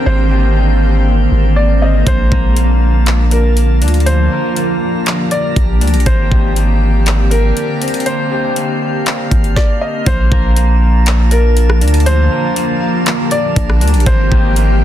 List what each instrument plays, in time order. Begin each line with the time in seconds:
Already playing: ambient pad D3 A#3 C4, clean electric guitar C4, synth texture D4 A#4 C5 G5
0.06 808-style bass G#1, ambient pad G#3, clean electric guitar A#3, felt piano C5
0.31 clean electric guitar G4
0.57 clean electric guitar A#3
1.32 808-style bass G#1
1.56 felt piano D5
1.82 clean electric guitar C4, felt piano D#5
2.06 808-style bass A#1, ambient pad F3 F4, clean electric guitar A#3, synth texture D4 A5, felt piano C5, kick, closed hi-hat
2.32 808-style bass A#1, clean electric guitar A#4, kick
2.56 clean electric guitar A#3, closed hi-hat
3.06 clap, closed hi-hat
3.31 felt piano A#4, closed hi-hat
3.57 closed hi-hat
3.81 808-style bass D2, clean electric guitar D4, closed hi-hat
3.88 closed hi-hat
3.94 closed hi-hat
4.00 closed hi-hat
4.06 clean electric guitar A#3, ambient pad G4, felt piano C5, synth texture A#5, closed hi-hat
4.32 clean electric guitar A#4
4.56 clean electric guitar A#3, closed hi-hat
5.06 clap, closed hi-hat
5.31 felt piano D5, closed hi-hat
5.56 808-style bass A#1, kick, closed hi-hat
5.81 808-style bass D2, clean electric guitar D4, closed hi-hat
5.87 closed hi-hat
5.94 808-style bass A#1, closed hi-hat
6.00 closed hi-hat
6.06 808-style bass G#1, ambient pad D3 C4 G4, clean electric guitar A#3, synth texture A#4 C5 G5, felt piano C5, kick, closed hi-hat
6.31 808-style bass G#1, clean electric guitar G4, kick
6.56 clean electric guitar A#3, closed hi-hat
7.06 clap, closed hi-hat
7.31 felt piano A#4, closed hi-hat
7.57 closed hi-hat
7.82 clean electric guitar C4, closed hi-hat
7.88 closed hi-hat
7.94 closed hi-hat
8.00 closed hi-hat
8.06 clean electric guitar A#3, felt piano C5, synth texture F5, closed hi-hat
8.31 clean electric guitar G4
8.56 clean electric guitar A#3, closed hi-hat
9.06 clap, closed hi-hat
9.31 808-style bass G#1, kick, closed hi-hat
9.44 closed hi-hat
9.56 felt piano D5, kick, snare
9.81 felt piano D#5
10.06 808-style bass A#1, ambient pad D3 F3 A#3 F4, clean electric guitar A#3, synth texture D4 A#4 A5, felt piano C5, kick, closed hi-hat
10.32 808-style bass A#1, clean electric guitar A#4, kick
10.56 clean electric guitar A#3, closed hi-hat
11.06 clap, closed hi-hat
11.31 felt piano A#4, closed hi-hat
11.57 closed hi-hat
11.70 cross-stick
11.81 808-style bass D2, clean electric guitar D4, closed hi-hat
11.88 closed hi-hat
11.94 closed hi-hat
12.00 closed hi-hat
12.06 clean electric guitar A#3, ambient pad G4, felt piano C5, closed hi-hat
12.32 clean electric guitar A#4
12.56 clean electric guitar A#3, closed hi-hat
13.06 clap, closed hi-hat
13.31 felt piano D5, closed hi-hat
13.56 808-style bass A#1, kick, closed hi-hat
13.70 cross-stick
13.81 808-style bass D2, clean electric guitar D4, closed hi-hat
13.88 closed hi-hat
13.94 808-style bass A#1, closed hi-hat
14.00 closed hi-hat
14.06 808-style bass G#1, clean electric guitar A#3, ambient pad C4, synth texture C5 G5, felt piano C5, kick, closed hi-hat
14.31 808-style bass G#1, clean electric guitar G4, kick
14.56 clean electric guitar A#3, closed hi-hat